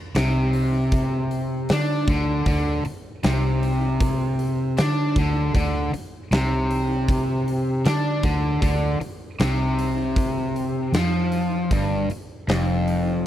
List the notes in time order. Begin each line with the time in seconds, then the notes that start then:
0.15 C2 C3, snare, open hi-hat
0.53 open hi-hat
0.92 kick, open hi-hat
1.31 open hi-hat
1.69 D3 D4, snare, open hi-hat
2.07 D2 D3, kick, open hi-hat
2.46 D2 D3, kick, open hi-hat
2.85 muted overdriven electric guitar stroke, muted fingered electric bass stroke, open hi-hat
3.23 C2 C3, snare, open hi-hat
3.63 open hi-hat
4.00 kick, open hi-hat
4.39 open hi-hat
4.78 D3 D4, snare, open hi-hat
5.16 D2 D3, kick, open hi-hat
5.54 D2 D3, kick, open hi-hat
5.93 muted fingered electric bass stroke, muted overdriven electric guitar stroke, open hi-hat
6.31 C2 C3, snare, open hi-hat
6.71 open hi-hat
7.08 kick, open hi-hat
7.48 open hi-hat
7.85 D3 D4, snare, open hi-hat
8.23 D2 D3, kick, open hi-hat
8.62 D2 D3, kick, open hi-hat
9.00 muted fingered electric bass stroke, muted overdriven electric guitar stroke, open hi-hat
9.40 C2 C3, snare, open hi-hat
9.79 open hi-hat
10.16 kick, open hi-hat
10.56 open hi-hat
10.92 F2 F3, snare, open hi-hat
11.32 open hi-hat
11.71 G1 G2, kick, open hi-hat
12.10 muted fingered electric bass stroke, muted overdriven electric guitar stroke, open hi-hat
12.48 F1 F2, snare, open hi-hat
12.88 open hi-hat